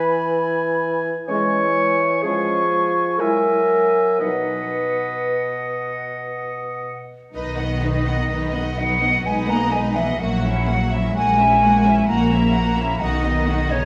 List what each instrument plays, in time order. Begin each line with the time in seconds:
Already playing: bassoon E3, clarinet B4, oboe G#5, flute B5
1.28 bassoon E3, french horn section G#3 C#4, clarinet C#5, oboe G#5, flute C#6
2.22 bassoon F3, french horn section G#3 C#4, clarinet G#4, oboe G#5, flute C#6
3.18 bassoon F#3, french horn section G#3 E4, clarinet A#4, oboe E5, flute G#5
4.20 bassoon B2, french horn section F#3 D#4, clarinet B4, oboe D#5, flute F#5
7.34 double bass section B1, cello section D#3, viola section D#4, violin section B4 D#5, flute D#5
7.58 viola section B3, violin section D#5 F#5
7.82 viola section D#4, violin section B4 D#5
8.06 viola section B3, violin section D#5 F#5
8.28 double bass section B1, viola section D#4, violin section B4 D#5
8.53 viola section B3, violin section D#5 F#5
8.77 cello section F#3, viola section D#4, violin section B4 D#5, flute F#5
9.01 viola section B3, violin section D#5 F#5
9.24 double bass section B1, cello section G#3, viola section D#4, violin section B4 D#5, flute G#5
9.47 cello section A#3, viola section B3, violin section D#5 F#5, flute A#5
9.71 cello section G#3, viola section D#4, violin section B4 D#5, flute G#5
9.95 cello section E3, viola section B3, violin section D#5 F#5, flute E5
10.19 double bass section A#1, cello section F#3, viola section A#3, violin section F#4 F#5, flute F#5
10.44 viola section C#4, violin section E4 E5
10.66 viola section A#3, violin section F#4 F#5
10.92 viola section C#4, violin section E4 E5
11.14 double bass section A#1, cello section G#3, viola section A#3, violin section F#4 F#5, flute G#5
11.38 viola section C#4, violin section E4 E5
11.62 viola section A#3, violin section F#4 F#5
11.85 viola section C#4, violin section E4 E5
12.08 double bass section A#1, viola section A#3, cello section A#3, violin section F#4 F#5, flute A#5
12.30 viola section C#4, violin section E4 E5
12.53 viola section A#3, violin section F#4 F#5
12.77 viola section C#4, violin section E4 E5
12.99 double bass section B1, cello section D#3, viola section D#4, violin section F#4 F#5, flute D#5
13.24 viola section B3, violin section D#4 D#5
13.46 viola section D#4, violin section F#4 F#5
13.70 cello section C#3, viola section B3, violin section D#4 D#5, flute C#5